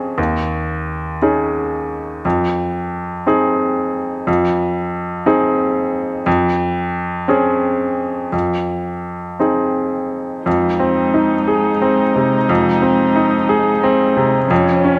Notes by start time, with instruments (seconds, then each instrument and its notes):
Already playing: grand piano F2 C4 C#4 G#4
0.18 grand piano D#2
1.22 grand piano C#4 D#4 G#4
2.25 grand piano F2
3.27 grand piano C4 D#4 G#4
4.27 grand piano F2
5.26 grand piano C4 D#4 G#4
6.26 grand piano F2
7.28 grand piano C4 C#4 G#4
8.32 grand piano F2
9.40 grand piano C4 D#4 G#4
10.46 grand piano F2, cello G#3, viola D#4
10.80 grand piano C4
11.14 grand piano D#4
11.48 grand piano G#4
11.82 grand piano C4
12.16 grand piano C3
12.49 grand piano F2
12.82 grand piano C4
13.16 grand piano D#4
13.49 grand piano G#4
13.83 grand piano C4
14.17 grand piano C3
14.50 grand piano F2, cello F3, viola C#4
14.84 grand piano C#4